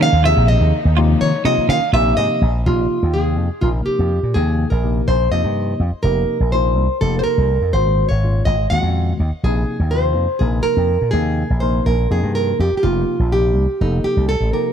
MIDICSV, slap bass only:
0, 0, Header, 1, 3, 480
1, 0, Start_track
1, 0, Tempo, 483871
1, 968, Time_signature, 7, 3, 24, 8
1, 14608, End_track
2, 0, Start_track
2, 0, Title_t, "Slap bass"
2, 0, Program_c, 0, 36
2, 124, Note_on_c, 0, 39, 84
2, 318, Note_off_c, 0, 39, 0
2, 365, Note_on_c, 0, 34, 99
2, 558, Note_off_c, 0, 34, 0
2, 601, Note_on_c, 0, 39, 93
2, 700, Note_off_c, 0, 39, 0
2, 844, Note_on_c, 0, 39, 101
2, 1131, Note_off_c, 0, 39, 0
2, 1206, Note_on_c, 0, 51, 81
2, 1301, Note_off_c, 0, 51, 0
2, 1434, Note_on_c, 0, 48, 104
2, 1533, Note_off_c, 0, 48, 0
2, 1672, Note_on_c, 0, 51, 99
2, 1771, Note_off_c, 0, 51, 0
2, 1911, Note_on_c, 0, 34, 95
2, 2105, Note_off_c, 0, 34, 0
2, 2154, Note_on_c, 0, 44, 107
2, 2251, Note_off_c, 0, 44, 0
2, 2396, Note_on_c, 0, 34, 102
2, 2588, Note_off_c, 0, 34, 0
2, 2640, Note_on_c, 0, 34, 71
2, 2830, Note_off_c, 0, 34, 0
2, 3001, Note_on_c, 0, 39, 65
2, 3359, Note_off_c, 0, 39, 0
2, 3359, Note_on_c, 0, 41, 62
2, 3453, Note_off_c, 0, 41, 0
2, 3592, Note_on_c, 0, 34, 86
2, 3785, Note_off_c, 0, 34, 0
2, 3957, Note_on_c, 0, 41, 61
2, 4148, Note_off_c, 0, 41, 0
2, 4197, Note_on_c, 0, 46, 71
2, 4292, Note_off_c, 0, 46, 0
2, 4318, Note_on_c, 0, 39, 77
2, 4604, Note_off_c, 0, 39, 0
2, 4675, Note_on_c, 0, 34, 60
2, 4963, Note_off_c, 0, 34, 0
2, 5037, Note_on_c, 0, 34, 74
2, 5229, Note_off_c, 0, 34, 0
2, 5270, Note_on_c, 0, 41, 79
2, 5369, Note_off_c, 0, 41, 0
2, 5396, Note_on_c, 0, 43, 67
2, 5684, Note_off_c, 0, 43, 0
2, 5751, Note_on_c, 0, 41, 76
2, 5850, Note_off_c, 0, 41, 0
2, 5988, Note_on_c, 0, 29, 76
2, 6184, Note_off_c, 0, 29, 0
2, 6351, Note_on_c, 0, 34, 64
2, 6714, Note_off_c, 0, 34, 0
2, 6714, Note_on_c, 0, 36, 69
2, 6812, Note_off_c, 0, 36, 0
2, 6959, Note_on_c, 0, 29, 81
2, 7151, Note_off_c, 0, 29, 0
2, 7318, Note_on_c, 0, 36, 66
2, 7511, Note_off_c, 0, 36, 0
2, 7555, Note_on_c, 0, 41, 73
2, 7654, Note_off_c, 0, 41, 0
2, 7672, Note_on_c, 0, 32, 75
2, 7964, Note_off_c, 0, 32, 0
2, 8037, Note_on_c, 0, 32, 58
2, 8327, Note_off_c, 0, 32, 0
2, 8391, Note_on_c, 0, 32, 74
2, 8588, Note_off_c, 0, 32, 0
2, 8640, Note_on_c, 0, 39, 68
2, 8738, Note_off_c, 0, 39, 0
2, 8756, Note_on_c, 0, 41, 62
2, 9046, Note_off_c, 0, 41, 0
2, 9122, Note_on_c, 0, 39, 64
2, 9219, Note_off_c, 0, 39, 0
2, 9358, Note_on_c, 0, 34, 71
2, 9553, Note_off_c, 0, 34, 0
2, 9717, Note_on_c, 0, 39, 64
2, 10077, Note_off_c, 0, 39, 0
2, 10077, Note_on_c, 0, 41, 64
2, 10177, Note_off_c, 0, 41, 0
2, 10322, Note_on_c, 0, 34, 84
2, 10515, Note_off_c, 0, 34, 0
2, 10680, Note_on_c, 0, 41, 65
2, 10875, Note_off_c, 0, 41, 0
2, 10928, Note_on_c, 0, 46, 79
2, 11024, Note_off_c, 0, 46, 0
2, 11041, Note_on_c, 0, 39, 80
2, 11331, Note_off_c, 0, 39, 0
2, 11410, Note_on_c, 0, 34, 61
2, 11697, Note_off_c, 0, 34, 0
2, 11767, Note_on_c, 0, 34, 81
2, 11960, Note_off_c, 0, 34, 0
2, 12010, Note_on_c, 0, 41, 76
2, 12106, Note_off_c, 0, 41, 0
2, 12134, Note_on_c, 0, 43, 69
2, 12419, Note_off_c, 0, 43, 0
2, 12492, Note_on_c, 0, 41, 67
2, 12587, Note_off_c, 0, 41, 0
2, 12733, Note_on_c, 0, 29, 83
2, 12924, Note_off_c, 0, 29, 0
2, 13088, Note_on_c, 0, 34, 65
2, 13450, Note_off_c, 0, 34, 0
2, 13450, Note_on_c, 0, 36, 72
2, 13546, Note_off_c, 0, 36, 0
2, 13697, Note_on_c, 0, 29, 83
2, 13886, Note_off_c, 0, 29, 0
2, 14053, Note_on_c, 0, 36, 66
2, 14244, Note_off_c, 0, 36, 0
2, 14289, Note_on_c, 0, 33, 76
2, 14386, Note_off_c, 0, 33, 0
2, 14608, End_track
3, 0, Start_track
3, 0, Title_t, "Muted slap bass strokes"
3, 1564, Note_on_c, 9, 29, 44
3, 1663, Note_off_c, 9, 29, 0
3, 3835, Note_on_c, 9, 29, 28
3, 3934, Note_off_c, 9, 29, 0
3, 5870, Note_on_c, 9, 29, 30
3, 5969, Note_off_c, 9, 29, 0
3, 7198, Note_on_c, 9, 29, 27
3, 7297, Note_off_c, 9, 29, 0
3, 9241, Note_on_c, 9, 29, 28
3, 9340, Note_off_c, 9, 29, 0
3, 12622, Note_on_c, 9, 29, 31
3, 12722, Note_off_c, 9, 29, 0
3, 13938, Note_on_c, 9, 29, 30
3, 14037, Note_off_c, 9, 29, 0
3, 14608, End_track
0, 0, End_of_file